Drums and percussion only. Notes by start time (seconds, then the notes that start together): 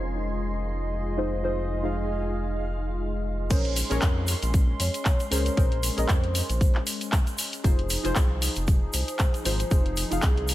3.51 kick, closed hi-hat, crash, shaker
3.65 closed hi-hat
3.76 open hi-hat, shaker
3.91 closed hi-hat, shaker
4.02 kick, clap, closed hi-hat, shaker
4.27 open hi-hat, shaker
4.42 closed hi-hat, shaker
4.54 kick, closed hi-hat, shaker
4.80 open hi-hat, shaker
4.94 closed hi-hat, shaker
5.05 kick, clap, closed hi-hat, shaker
5.20 closed hi-hat, shaker
5.32 open hi-hat, shaker
5.46 closed hi-hat, shaker
5.57 kick, closed hi-hat, shaker
5.72 closed hi-hat
5.83 open hi-hat, shaker
5.98 closed hi-hat, shaker
6.09 kick, clap, closed hi-hat, shaker
6.24 closed hi-hat
6.35 open hi-hat, shaker
6.49 closed hi-hat, shaker
6.61 kick, closed hi-hat, shaker
6.75 clap
6.87 open hi-hat, shaker
7.01 closed hi-hat, shaker
7.12 kick, clap, closed hi-hat, shaker
7.27 closed hi-hat, shaker
7.38 open hi-hat, shaker
7.53 closed hi-hat, shaker
7.64 kick, closed hi-hat, shaker
7.79 closed hi-hat
7.90 open hi-hat, shaker
8.05 closed hi-hat, shaker
8.16 kick, clap, closed hi-hat, shaker
8.42 open hi-hat, shaker
8.55 closed hi-hat, shaker
8.67 kick, closed hi-hat, shaker
8.93 open hi-hat, shaker
9.08 closed hi-hat, shaker
9.19 kick, clap, closed hi-hat, shaker
9.34 closed hi-hat, shaker
9.45 open hi-hat, shaker
9.60 closed hi-hat, shaker
9.71 kick, closed hi-hat, shaker
9.86 closed hi-hat
9.97 open hi-hat, shaker
10.12 closed hi-hat, shaker
10.22 kick, clap, closed hi-hat, shaker
10.37 closed hi-hat
10.48 open hi-hat, shaker